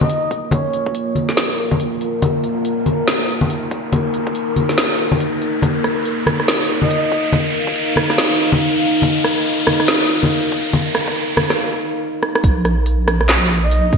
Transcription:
Already playing: ambient pad A#3 F4 A#4, riser
0.01 soft synth lead D#5, high conga
0.10 closed hi-hat
0.31 kick, closed hi-hat
0.51 soft synth lead C#5, kick, closed hi-hat, high conga
0.74 closed hi-hat
0.86 kick
0.95 closed hi-hat
1.15 closed hi-hat, high conga
1.29 snare
1.37 snare, closed hi-hat
1.59 closed hi-hat
1.71 kick, high conga
1.80 closed hi-hat
2.01 closed hi-hat
2.22 ambient pad D#4, kick, closed hi-hat, high conga
2.44 closed hi-hat
2.65 closed hi-hat
2.86 closed hi-hat, high conga
3.08 snare, closed hi-hat
3.29 closed hi-hat
3.41 high conga
3.50 closed hi-hat
3.71 kick, closed hi-hat
3.93 kick, closed hi-hat, high conga
4.14 closed hi-hat
4.27 kick
4.35 closed hi-hat
4.56 closed hi-hat, high conga
4.69 snare
4.78 snare, closed hi-hat
4.99 closed hi-hat
5.12 kick, high conga
5.20 closed hi-hat
5.42 closed hi-hat
5.62 ambient pad D#4 F5, kick, closed hi-hat, high conga
5.84 cross-stick, closed hi-hat
6.06 closed hi-hat
6.26 cross-stick, closed hi-hat, high conga
6.40 cross-stick
6.48 snare, closed hi-hat
6.69 closed hi-hat
6.82 soft synth lead D#5, high conga
6.91 closed hi-hat
7.12 kick, closed hi-hat
7.32 kick, closed hi-hat, high conga
7.54 closed hi-hat
7.67 kick
7.76 closed hi-hat
7.96 cross-stick, closed hi-hat, high conga
8.10 cross-stick, snare
8.18 snare, closed hi-hat
8.39 closed hi-hat
8.52 kick, high conga
8.61 closed hi-hat
8.82 closed hi-hat
9.02 kick, closed hi-hat, high conga
9.24 cross-stick, closed hi-hat
9.46 closed hi-hat
9.67 cross-stick, closed hi-hat, high conga
9.80 cross-stick
9.88 snare, closed hi-hat
10.10 closed hi-hat
10.23 high conga
10.31 closed hi-hat
10.52 kick, closed hi-hat
10.73 kick, closed hi-hat, high conga
10.95 cross-stick, closed hi-hat
11.08 kick
11.16 closed hi-hat
11.37 cross-stick, closed hi-hat, high conga
11.50 cross-stick, snare
12.23 cross-stick
12.35 cross-stick
12.44 wobble bass A#1, ambient pad A#3 F4 A#4, kick, closed hi-hat
12.65 cross-stick, closed hi-hat
12.86 closed hi-hat
13.08 cross-stick, closed hi-hat
13.21 cross-stick
13.29 snare, clap, closed hi-hat
13.50 closed hi-hat
13.63 soft synth lead D#5
13.71 closed hi-hat
13.93 kick, closed hi-hat

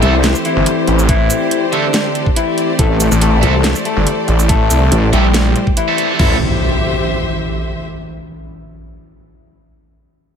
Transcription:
Already playing: clean electric guitar E3 E4, ambient pad E3 A3 C4, string section G4 C5 E5
0.02 wobble bass C2, distorted electric guitar C4 A4 E5, closed hi-hat
0.24 snare, closed hi-hat
0.35 string section D5, shaker
0.45 clean electric guitar E3 E4, closed hi-hat
0.56 detuned saw bass G1
0.66 closed hi-hat
0.87 detuned saw bass A1, closed hi-hat
0.99 shaker
1.09 clean electric guitar E3 E4, kick, closed hi-hat
1.30 closed hi-hat, shaker
1.51 closed hi-hat
1.72 clean electric guitar D3 D4, distorted electric guitar C4 A4 E5, closed hi-hat
1.94 snare, closed hi-hat
2.15 closed hi-hat
2.26 kick
2.36 clean electric guitar E3 E4, closed hi-hat
2.58 closed hi-hat
2.79 wobble bass A1, clean electric guitar A3 A4, ambient pad E4, kick, closed hi-hat
3.00 closed hi-hat, shaker
3.12 detuned saw bass A1, shaker
3.21 clean electric guitar A3 A4, closed hi-hat
3.42 wobble bass C2, distorted electric guitar C4 A4 E5, closed hi-hat
3.64 snare, closed hi-hat
3.75 shaker
3.85 clean electric guitar A3 A4, closed hi-hat
3.97 detuned saw bass G1
4.07 closed hi-hat
4.28 detuned saw bass A1, closed hi-hat
4.39 shaker
4.49 clean electric guitar A3 A4, kick, closed hi-hat
4.70 detuned saw bass C2, closed hi-hat, shaker
4.92 wobble bass A1, closed hi-hat
5.13 detuned saw bass A#1, clean electric guitar G3 G4, distorted electric guitar C4 A4 E5, closed hi-hat
5.34 snare, closed hi-hat
5.56 closed hi-hat
5.67 kick
5.77 clean electric guitar E3 E4, closed hi-hat
5.88 distorted electric guitar C4 A4 E5
5.98 closed hi-hat
6.19 wobble bass A1, distorted electric guitar C4 A4 E5, clean electric guitar E4, kick, crash, impact
6.26 string section C5
6.33 string section E5

